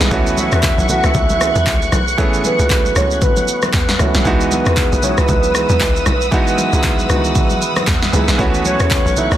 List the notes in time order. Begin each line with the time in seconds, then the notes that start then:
Already playing: E3 G#3 B3 D#4 F#4 G#4 F#5
0.01 B1, snare, shaker
0.11 C#2 E3 A3 B3 C#4 F#4 B4 C#6, kick, shaker
0.27 shaker
0.37 E5, high conga, shaker
0.52 E2 E3 A3 B3 C#4 F#4, cross-stick, shaker
0.63 kick, clap, low conga, shaker
0.78 B1, high conga, shaker
0.88 E3 A3 B3 C#4 F#4 F#5, high conga, low conga, shaker
1.04 C#2 E5, cross-stick, shaker
1.14 C#2, kick, low conga, shaker
1.29 high conga, shaker
1.40 E3 A3 B3 C#4 G#4, cross-stick, shaker
1.55 E2, high conga, shaker
1.67 C#2, kick, clap, shaker
1.82 shaker
1.92 B1, cross-stick, high conga, low conga, shaker
2.08 shaker
2.18 E3 A3 B3 C#4 G#4, kick, shaker
2.34 shaker
2.44 B4, high conga, shaker
2.59 C#2 E3 A3 B3 C#4 F#4, shaker
2.70 kick, clap, low conga, shaker
2.85 high conga, shaker
2.95 C#2 E3 A3 B3 C#4 F#4 C#5, cross-stick, high conga, low conga, shaker
3.11 shaker
3.22 B4, kick, low conga, shaker
3.36 high conga, shaker
3.48 shaker
3.62 cross-stick, high conga, shaker
3.73 E2, kick, snare, clap, shaker
3.89 snare, shaker
3.99 C#2 E3 A3 B3 C#4 F#4, cross-stick, high conga, low conga, shaker
4.15 B1, snare, shaker
4.25 C#2 E3 G#3 B3 D#4 F#4 D#6 E6, kick, shaker
4.41 shaker
4.51 B4, high conga, shaker
4.66 E2 E3 G#3 B3 D#4 G#4, cross-stick, shaker
4.77 kick, clap, low conga, shaker
4.92 B1, high conga, shaker
5.02 E3 G#3 B3 D#4 F#4 C#5, high conga, low conga, shaker
5.18 C#2 B4, cross-stick, shaker
5.28 C#2, kick, low conga, shaker
5.43 high conga, shaker
5.54 E3 G#3 B3 D#4 G#4, cross-stick, shaker
5.69 E2, high conga, shaker
5.80 C#2, kick, clap, shaker
5.96 shaker
6.06 B1, cross-stick, high conga, low conga, shaker
6.21 shaker
6.31 E3 G#3 B3 D#4 F#4, kick, shaker
6.47 shaker
6.58 high conga, shaker
6.72 C#2 E3 G#3 B3 D#4 G#4, shaker
6.83 kick, clap, low conga, shaker
6.99 high conga, shaker
7.09 C#2 D#3 G#3 B3 D#4 F#4, cross-stick, high conga, low conga, shaker
7.15 E3
7.24 shaker
7.35 kick, low conga, shaker
7.50 high conga, shaker
7.62 shaker
7.76 cross-stick, high conga, shaker
7.87 E2, kick, snare, clap, shaker
8.03 snare, shaker
8.12 C#2 E3 G#3 B3 D#4 G#4, high conga, low conga, shaker
8.28 B1, snare, shaker
8.38 C#2 E3 A3 B3 C#4 F#4 F#5 C#6, kick, shaker
8.54 shaker
8.65 C#5, high conga, shaker
8.79 E2 E3 A3 B3 C#4, cross-stick, shaker
8.90 kick, clap, low conga, shaker
9.06 B1, high conga, shaker
9.16 E3 A3 B3 C#4 D#4 E5, high conga, low conga, shaker
9.31 C#2 C#5, cross-stick, shaker